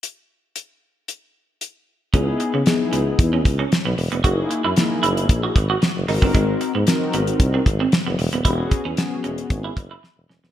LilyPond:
<<
  \new Staff \with { instrumentName = "Analog polysynth" } { \time 4/4 \key cis \dorian \tempo 4 = 114 r1 | <b dis' e' gis'>8 r8 <b dis' e' gis'>4. r4. | <ais dis' e' gis'>8 r8 <ais dis' e' gis'>4. r4 <bis dis' fis' ais'>8~ | <bis dis' fis' ais'>8 r8 <bis dis' fis' ais'>4. r4. |
<b cis' fis' g' gis'>8 r8 <b cis' fis' gis'>4. r4. | }
  \new Staff \with { instrumentName = "Clean electric guitar" } { \time 4/4 \key cis \dorian r1 | cis'16 r8 b16 r8 b16 r8 cis'16 r16 cis'16 r16 b16 r16 b16 | fis'16 r8 e'16 r8 e'16 r8 fis'16 r16 fis'16 r8 dis'16 bis16 | gis16 r8 b16 r8 b16 r8 bis16 r16 bis16 r16 b16 r16 b16 |
e'16 r8 cis'16 r8 cis'16 r8 e'16 r16 e'16 r8 cis'16 b16 | }
  \new Staff \with { instrumentName = "Tuba" } { \clef bass \time 4/4 \key cis \dorian r1 | cis,8 r16 cis16 r8 cis,8 e,8 cis,8 r16 b,,16 e,,16 eis,,16 | fis,,8 r16 fis,16 r8 fis,,8 ais,,8 gis,,8 r16 fis,,16 gis,,16 g,,16 | gis,,8 r16 gis,16 r8 gis,,8 bis,,8 gis,,8 r16 fis,,16 e,,16 dis,,16 |
e,,8 r16 e,16 r8 e,,8 gis,,8 fis,,8 r16 e,,16 e,,16 dis,,16 | }
  \new DrumStaff \with { instrumentName = "Drums" } \drummode { \time 4/4 hh4 hh4 hh4 hh4 | <hh bd>8 hh8 <hh sn>8 hh8 <hh bd>8 <hh bd>8 <hh sn>8 hho16 hh16 | <hh bd>8 hh8 <hh sn>8 hh16 hh16 <hh bd>8 <hh bd>8 <hh sn>8 hho16 bd16 | <hh bd>8 hh8 <hh sn>8 hh16 hh16 <hh bd>8 <hh bd>8 <hh sn>8 hho16 hh16 |
<hh bd>8 <hh bd>8 <hh sn>8 hh16 hh16 <hh bd>8 <hh bd>8 sn8 sn16 sn16 | }
>>